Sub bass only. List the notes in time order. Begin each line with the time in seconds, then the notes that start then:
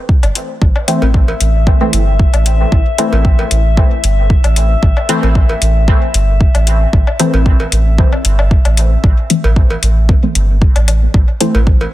0.23 G1
0.62 A1
1.02 A1
1.41 A1
1.93 G1
2.34 A1
2.72 A1
3.13 A1
3.51 A1
4.04 G1
4.44 A1
4.83 A1
5.23 A1
5.62 A1
6.14 G1
6.55 A1
6.93 A1
7.34 A1
7.72 A1
8.25 G1
8.65 A1
9.04 A1
9.44 A1
9.83 A1
10.35 G1
10.76 A1
11.14 A1
11.55 A1